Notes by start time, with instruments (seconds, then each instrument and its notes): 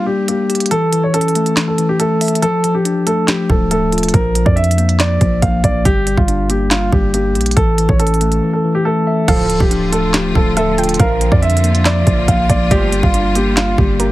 Already playing: tine electric piano G3 A#3 D4
0.06 tine electric piano G3, grand piano G4
0.28 tine electric piano A#3, grand piano G4, closed hi-hat
0.49 tine electric piano G4, closed hi-hat
0.55 closed hi-hat
0.60 closed hi-hat
0.66 closed hi-hat
0.71 tine electric piano E3, grand piano A4, closed hi-hat
0.92 tine electric piano E3, closed hi-hat
1.03 grand piano C#5
1.14 tine electric piano C#4, grand piano A4, closed hi-hat
1.21 closed hi-hat
1.28 closed hi-hat
1.35 tine electric piano A3, closed hi-hat
1.46 closed hi-hat
1.57 snare, clap, closed hi-hat
1.68 grand piano A4
1.78 tine electric piano E3, closed hi-hat
1.89 grand piano G4
2.00 tine electric piano A3, grand piano A4, closed hi-hat
2.21 tine electric piano E5, closed hi-hat, open hi-hat
2.28 closed hi-hat
2.35 closed hi-hat
2.42 tine electric piano F3, grand piano A4, closed hi-hat
2.64 tine electric piano F3, closed hi-hat
2.75 grand piano G4
2.85 tine electric piano D4, closed hi-hat
3.06 tine electric piano A3, grand piano A4, closed hi-hat
3.28 tine electric piano F3, grand piano G4, snare, clap, closed hi-hat
3.49 808-style bass D1, tine electric piano F3, grand piano A4, kick
3.71 tine electric piano A3, grand piano A4, closed hi-hat
3.92 tine electric piano F4, closed hi-hat
3.98 closed hi-hat
4.03 closed hi-hat
4.09 closed hi-hat
4.14 808-style bass A#1, tine electric piano F3, grand piano A#4, kick, closed hi-hat
4.35 tine electric piano F3, closed hi-hat
4.46 808-style bass F2, grand piano D5, kick
4.56 tine electric piano D4, grand piano E5, closed hi-hat
4.64 closed hi-hat
4.71 closed hi-hat
4.78 tine electric piano A#3, closed hi-hat
4.89 closed hi-hat
5.00 tine electric piano F3, grand piano D5, snare, clap, closed hi-hat
5.21 808-style bass A#1, tine electric piano F3, kick, closed hi-hat
5.42 808-style bass A#1, tine electric piano A#3, grand piano F5, kick, closed hi-hat
5.64 808-style bass A#1, grand piano D5, tine electric piano F5, kick, closed hi-hat
5.85 808-style bass G1, tine electric piano G3, grand piano G4, kick, closed hi-hat
6.07 tine electric piano G3, closed hi-hat
6.17 808-style bass G1, grand piano F4, kick
6.28 tine electric piano D4, closed hi-hat
6.49 tine electric piano A#3, grand piano G4, closed hi-hat
6.71 tine electric piano G3, grand piano F4, snare, clap, closed hi-hat
6.92 808-style bass G1, tine electric piano G3, grand piano G4, kick
7.14 tine electric piano A#3, grand piano G4, closed hi-hat
7.35 808-style bass A#1, tine electric piano G4, closed hi-hat
7.41 closed hi-hat
7.46 closed hi-hat
7.51 closed hi-hat
7.57 808-style bass A1, tine electric piano E3, grand piano A4, kick, closed hi-hat
7.78 tine electric piano E3, closed hi-hat
7.89 808-style bass A1, grand piano C#5, kick
7.99 tine electric piano C#4, grand piano A4, closed hi-hat
8.07 closed hi-hat
8.14 closed hi-hat
8.21 tine electric piano A3, closed hi-hat
8.32 closed hi-hat
8.43 tine electric piano E3
8.53 grand piano A4
8.64 tine electric piano E3
8.75 grand piano G4
8.85 tine electric piano A3, grand piano A4
9.07 tine electric piano E5
9.28 808-style bass D1, analog polysynth D2 A2 F3, string section D3 F3 A3 F4, tine electric piano F3, grand piano A4, synth pluck F5, kick, closed hi-hat, crash
9.50 tine electric piano F3, closed hi-hat
9.60 808-style bass D1, grand piano G4, kick
9.71 tine electric piano D4, closed hi-hat
9.92 tine electric piano A3, grand piano A4, closed hi-hat
10.14 tine electric piano F3, grand piano G4, snare, clap, closed hi-hat
10.35 808-style bass D1, tine electric piano F3, grand piano A4, kick
10.57 tine electric piano A3, grand piano A4, synth pluck E5, closed hi-hat
10.78 tine electric piano F4, synth pluck G5, closed hi-hat
10.84 closed hi-hat
10.89 closed hi-hat
10.94 closed hi-hat
10.99 808-style bass A#1, tine electric piano F3, string section A#3 F4, grand piano A#4, synth pluck F5, kick, closed hi-hat
11.21 tine electric piano F3, closed hi-hat
11.32 808-style bass F2, grand piano D5, kick
11.42 tine electric piano D4, grand piano E5, closed hi-hat
11.50 closed hi-hat
11.57 closed hi-hat
11.64 tine electric piano A#3, closed hi-hat
11.75 closed hi-hat
11.85 tine electric piano F3, grand piano D5, synth pluck E5, snare, clap, closed hi-hat
12.07 808-style bass A#1, tine electric piano F3, kick, closed hi-hat
12.28 808-style bass A#1, tine electric piano A#3, grand piano F5, kick, closed hi-hat
12.49 808-style bass A#1, grand piano D5, tine electric piano F5, kick, closed hi-hat
12.70 808-style bass G1, analog polysynth D2 A#2 F3, tine electric piano G3, string section G3, grand piano G4, synth pluck D5, kick, closed hi-hat
12.92 tine electric piano G3, closed hi-hat
13.03 808-style bass G1, grand piano F4, kick
13.14 tine electric piano D4, closed hi-hat
13.35 tine electric piano A#3, grand piano G4, closed hi-hat
13.57 tine electric piano G3, grand piano F4, snare, clap, closed hi-hat
13.78 808-style bass G1, tine electric piano G3, grand piano G4, kick
13.99 tine electric piano A#3, grand piano G4, synth pluck A#4, closed hi-hat